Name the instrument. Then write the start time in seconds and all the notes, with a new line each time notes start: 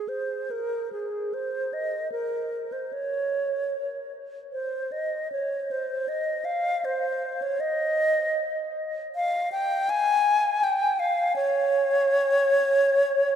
alto flute
0.08 C5
0.51 A#4
0.92 G#4
1.34 C5
1.73 D#5
2.12 A#4
2.72 C5
2.93 C#5
4.53 C5
4.92 D#5
5.32 C#5
5.71 C5
6.08 D#5
6.45 F5
6.85 C5
7.42 C#5
7.60 D#5
9.15 F5
9.52 G5
9.90 G#5
10.63 G5
10.99 F5
11.36 C#5